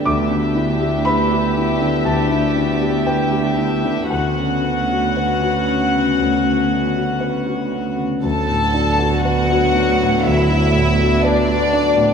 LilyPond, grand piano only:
\new Staff \with { instrumentName = "Grand piano" } { \time 4/4 \key d \major \tempo 4 = 60 << { d'''4 b''4 a''4 g''4 | fis''2. r4 | r1 | } \\ { d,16 d16 e'16 g'16 b'16 g'16 e'16 d16 d,16 e'16 d16 g'16 b'16 g'16 e'16 d16 | d,16 cis16 cis'16 fis'16 b'16 fis'16 cis'16 cis16 d,16 cis'16 cis16 fis'16 b'16 fis'16 cis'16 cis16 | d,16 a,16 d'16 fis'16 b'16 fis'16 d'16 a,16 d,16 d'16 a,16 fis'16 b'16 fis'16 d'16 a,16 | } >> }